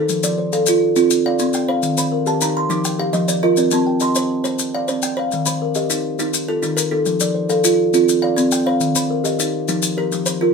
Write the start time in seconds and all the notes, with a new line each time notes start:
Already playing: D#4 A4 A#4 C5
0.09 F3, maracas
0.23 F3 D5, maracas
0.38 C5
0.53 A4 F5, maracas
0.66 F4 A4, maracas
0.96 C4 F4, maracas
1.10 maracas
1.26 D5 F5
1.39 C4, maracas
1.53 G5, maracas
1.68 C5 F5
1.83 D#3, maracas
1.97 D#3 C5, maracas
2.12 A#4
2.26 G4 A5, maracas
2.41 D#4 G4 A#5, maracas
2.57 C6
2.69 F3 D#4 D6, maracas
2.85 G5, maracas
2.99 G4 F5
3.13 F3 D#5, maracas
3.28 D5, maracas
3.43 F4 A#4 D#5
3.57 C4 D5, maracas
3.71 C4 A5, maracas
3.87 G5
4.00 D#5 C6, maracas
4.15 C5 D#5, maracas
4.44 C5, maracas
4.59 maracas
4.74 D5 F5
4.88 C4 C5, maracas
5.02 G5, maracas
5.17 C5 F5
5.32 D#3, maracas
5.46 D#3 C5, maracas
5.62 A#4
5.75 G4 D#5, maracas
5.90 D#4 G4, maracas
6.19 D#4, maracas
6.34 maracas
6.48 F4 A4
6.63 D#3 D#4, maracas
6.77 A#4, maracas
6.91 D#4 A4
7.06 F3, maracas
7.20 F3 D5, maracas
7.35 C5
7.49 A4 F5, maracas
7.64 F4 A4, maracas
7.94 C4 F4, maracas
8.09 maracas
8.22 D5 F5
8.36 C4, maracas
8.52 G5, maracas
8.66 C5 F5
8.81 D#3, maracas
8.95 D#3 C5, maracas
9.10 A#4
9.24 G4 D#5, maracas
9.39 D#4 G4, maracas
9.68 F3 D#4, maracas
9.82 maracas
9.97 G4 A#4
10.12 F3, maracas
10.26 C5, maracas
10.41 F4 A#4